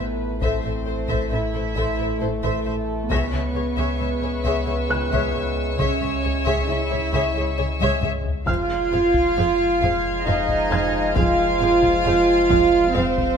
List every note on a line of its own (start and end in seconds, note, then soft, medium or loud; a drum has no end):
0.00 3.12 A1 medium
0.00 3.07 E3 medium
0.00 3.07 A3 medium
0.00 0.38 B3 medium
0.00 3.07 A4 medium
0.00 0.38 B4 medium
0.00 3.07 E5 medium
0.00 1.73 G#6 soft
0.41 0.49 A1 soft
0.41 1.30 C4 medium
0.41 0.63 A4 soft
0.41 0.63 C5 soft
0.41 1.30 C5 soft
0.41 0.63 E5 soft
0.41 taiko medium
0.64 0.72 A1 soft
0.64 0.72 A4 soft
0.64 0.72 C5 soft
0.64 0.72 E5 soft
0.87 0.95 A1 soft
0.87 0.95 A4 soft
0.87 0.95 C5 soft
1.08 1.17 A1 soft
1.08 1.30 A4 soft
1.08 1.30 C5 soft
1.08 1.30 E5 soft
1.08 taiko medium
1.31 1.39 A1 soft
1.31 2.21 E4 medium
1.31 1.39 A4 soft
1.31 1.40 C5 soft
1.31 1.40 E5 soft
1.31 2.21 E5 soft
1.54 1.62 A1 soft
1.54 1.62 A4 soft
1.54 1.62 C5 soft
1.75 1.84 A1 soft
1.75 1.98 A4 soft
1.75 1.98 C5 soft
1.75 1.97 E5 soft
1.75 taiko medium
1.99 2.07 A1 soft
1.99 2.07 A4 soft
1.99 2.07 C5 soft
1.99 2.07 E5 soft
2.20 2.28 A1 soft
2.20 3.11 A3 medium
2.20 2.30 A4 soft
2.20 3.10 A4 soft
2.20 2.29 C5 soft
2.43 2.51 A1 soft
2.43 2.65 A4 soft
2.43 2.64 C5 soft
2.43 2.64 E5 soft
2.43 taiko medium
2.66 2.74 A1 soft
2.66 2.74 A4 soft
2.66 2.74 C5 soft
2.66 2.74 E5 soft
3.10 8.50 C#2 medium
3.10 3.19 C#2 soft
3.10 8.30 C#3 soft
3.10 8.30 G#3 soft
3.10 5.75 B3 medium
3.10 3.32 G#4 soft
3.10 5.80 B4 medium
3.10 8.31 C#5 soft
3.10 3.32 C#5 soft
3.10 3.31 E5 soft
3.10 8.31 E5 soft
3.10 7.99 C#6 soft
3.10 5.76 A#6 soft
3.10 taiko medium
3.32 3.40 C#2 soft
3.32 3.41 G#4 soft
3.32 3.41 C#5 soft
3.32 3.41 E5 soft
3.55 3.63 C#2 soft
3.55 3.63 G#4 soft
3.55 3.63 C#5 soft
3.77 3.86 C#2 soft
3.77 3.99 G#4 soft
3.77 3.99 C#5 medium
3.77 3.98 E5 soft
3.77 taiko medium
4.00 4.08 C#2 soft
4.00 4.08 G#4 soft
4.00 4.09 C#5 soft
4.00 4.08 E5 soft
4.00 8.00 E6 soft
4.22 4.30 C#2 soft
4.22 4.31 G#4 soft
4.22 4.30 C#5 soft
4.44 4.53 C#2 medium
4.44 4.65 G#4 soft
4.44 4.65 C#5 soft
4.44 4.66 E5 medium
4.44 taiko medium
4.66 4.75 C#2 soft
4.66 4.74 G#4 soft
4.66 4.74 C#5 soft
4.66 4.75 E5 soft
4.89 4.97 C#2 soft
4.89 4.97 G#4 soft
4.89 4.98 C#5 soft
4.89 7.55 F#6 soft
5.12 5.20 C#2 medium
5.12 5.33 G#4 medium
5.12 5.33 C#5 medium
5.12 5.33 E5 soft
5.12 taiko medium
5.34 5.42 C#2 soft
5.34 5.42 G#4 soft
5.34 5.42 C#5 soft
5.34 5.42 E5 soft
5.78 5.86 C#2 medium
5.78 6.67 C#4 medium
5.78 6.00 G#4 medium
5.78 6.00 C#5 soft
5.78 6.67 C#5 medium
5.78 6.00 E5 medium
5.78 taiko medium
6.01 6.10 C#2 soft
6.01 6.09 G#4 soft
6.01 6.09 C#5 soft
6.01 6.09 E5 soft
6.23 6.32 C#2 soft
6.23 6.32 G#4 soft
6.23 6.32 C#5 soft
6.46 6.54 C#2 medium
6.46 6.67 G#4 medium
6.46 6.66 C#5 medium
6.46 6.67 E5 medium
6.46 taiko medium
6.67 6.77 C#2 soft
6.67 7.59 E4 medium
6.67 6.76 G#4 soft
6.67 6.75 C#5 soft
6.67 6.77 E5 soft
6.67 7.59 E5 medium
6.90 6.99 C#2 soft
6.90 6.98 G#4 soft
6.90 6.99 C#5 soft
7.13 7.21 C#2 medium
7.13 7.35 G#4 medium
7.13 7.35 C#5 medium
7.13 7.34 E5 medium
7.13 taiko medium
7.35 7.44 C#2 soft
7.35 7.45 G#4 soft
7.35 7.45 C#5 soft
7.35 7.43 E5 soft
7.58 7.67 C#2 soft
7.58 7.67 G#4 soft
7.58 7.66 C#5 soft
7.81 7.89 C#2 medium
7.81 8.02 G#4 medium
7.81 8.02 C#5 medium
7.81 8.01 E5 medium
7.81 taiko high medium
8.02 8.11 C#2 soft
8.02 8.12 G#4 soft
8.02 8.12 C#5 soft
8.02 8.10 E5 soft
8.02 taiko low-mid medium
8.24 taiko low medium
8.47 13.37 F1 medium
8.47 8.56 F2 medium
8.47 13.37 F3 medium
8.47 13.37 G#3 medium
8.47 10.23 F4 medium
8.47 8.56 G#4 soft
8.47 8.56 C5 medium
8.47 13.37 C5 medium
8.47 8.55 F5 medium
8.47 10.23 F5 medium
8.47 13.37 F5 medium
8.47 11.12 F6 soft
8.47 13.37 F6 soft
8.47 12.48 G#6 soft
8.47 11.58 C7 soft
8.47 taiko medium
8.92 9.00 F2 medium
8.92 9.00 G#4 soft
8.92 9.00 C5 soft
8.92 9.00 F5 soft
9.14 taiko medium
9.36 9.45 F2 medium
9.36 9.45 G#4 soft
9.36 9.45 C5 medium
9.36 9.44 F5 medium
9.81 9.89 F2 medium
9.81 9.91 G#4 soft
9.81 9.91 C5 soft
9.81 9.89 F5 medium
9.81 taiko medium
10.26 10.35 F2 medium
10.26 11.16 D#4 medium
10.26 10.35 G#4 medium
10.26 10.35 C5 medium
10.26 11.16 D#5 medium
10.26 10.34 F5 medium
10.48 taiko medium
10.70 10.79 F2 medium
10.70 10.79 G#4 medium
10.70 10.78 C5 medium
10.70 10.79 F5 medium
10.70 13.37 G#6 soft
11.15 11.24 F2 medium
11.15 12.92 F4 loud
11.15 11.24 G#4 medium
11.15 11.23 C5 medium
11.15 11.23 F5 medium
11.15 12.93 F5 medium
11.15 taiko medium
11.60 11.68 F2 medium
11.60 11.69 G#4 medium
11.60 11.69 C5 medium
11.60 11.68 F5 medium
11.83 taiko medium
12.05 12.14 F2 medium
12.05 12.14 G#4 medium
12.05 12.14 C5 medium
12.05 12.13 F5 medium
12.49 12.58 F2 medium
12.49 12.57 G#4 medium
12.49 12.57 C5 medium
12.49 12.58 F5 medium
12.49 taiko medium
12.94 13.04 F2 medium
12.94 13.37 C4 medium
12.94 13.02 G#4 medium
12.94 13.02 C5 medium
12.94 13.37 C5 medium
12.94 13.03 F5 medium
13.18 taiko medium